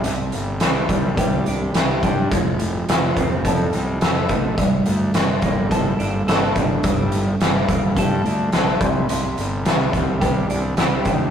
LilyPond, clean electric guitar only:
\new Staff \with { instrumentName = "Clean electric guitar" } { \time 4/4 \key g \minor \tempo 4 = 106 c4 ees8 g8 g'8 d'8 g'8 d'8 | f4 f8 c'8 a'8 ees'8 a'8 ees'8 | g,4 g8 bes8 a'8 d'8 a'8 d'8 | g,4 g8 bes8 a'8 d'8 a'8 c8 |
c4 ees8 g8 g'8 d'8 g'8 d'8 | }